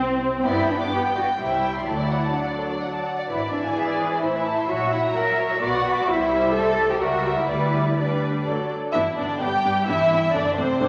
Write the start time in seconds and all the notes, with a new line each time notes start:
Already playing: C2 C4
0.46 G2 B3 E4 D5 G5
0.58 G5
0.69 D4 B5
0.80 D6
0.92 G4 B5
1.04 G5
1.15 F#4 D5
1.28 G5
1.39 C2 G3 E4 C5
1.51 E5
1.62 G5
1.75 C6
1.86 D2 F#3 E4 A4 D5
2.00 D5
2.11 F#5
2.23 A5
2.34 D4 F#5
2.46 D5
2.58 A4
2.70 D5
2.82 F#5
2.93 A5
3.05 F#5
3.18 D5
3.29 G#1 E3 E4 B4
3.41 D5
3.52 D4 E5
3.64 G#5
3.75 G#4 E5
3.89 D5
4.01 B4
4.12 D5
4.22 A1 E4 C5 E5
4.36 E5
4.47 A5
4.58 C6
4.68 A#1 F#3 F#4 C#5
4.80 E5
4.92 E4 F#5
5.05 A#5
5.15 A#4 F#5
5.27 E5
5.38 C#5
5.51 E5
5.61 B1 B3 F#4 D5
5.74 F#5
5.86 B5
5.98 D6
6.07 C2 G3 E4 C5 E5
6.54 A4
6.90 G4
7.00 C#2 G3 F#4 A#4 E5
7.38 E4
7.49 D2 G3 E4 B4 D5
7.97 G3 D4 B4 D5
8.45 D2 F#3 A4 D5
8.93 G2 E3 B3 D4 E4 E5
9.17 G2 D3 B3 D4 D5
9.41 G2 G3 B3 D4 G4 G5
9.64 G2 B3 D4
9.87 G2 E3 B3 D4 E4 E5
10.11 G2 B3 D4
10.34 F#2 D3 A3 D4 D5
10.57 F#2 C3 A3 C4 D4 C5
10.80 F#2 A3 D4